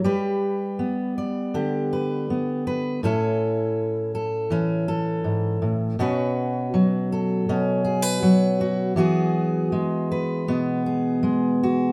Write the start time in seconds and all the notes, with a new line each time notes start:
0.04 G3 G4 B4
0.79 B3
1.18 D5
1.54 D3 G4
1.93 B4
2.30 B3
2.67 B4
3.03 A2 C#4 E4 A4
4.15 A4
4.50 E3 C#4
4.88 A4
5.24 G#2
5.62 A2
5.99 B2 C#4 F#4 B4
6.74 F#3
7.12 A4
7.49 B2 C#4
7.85 G#4
8.02 B4
8.23 F#3
8.61 F#4
8.96 E3 B3 F#4 G#4
9.72 G#3
10.12 B4
10.48 B2 B3
10.86 G#4
11.23 G#3
11.63 F#4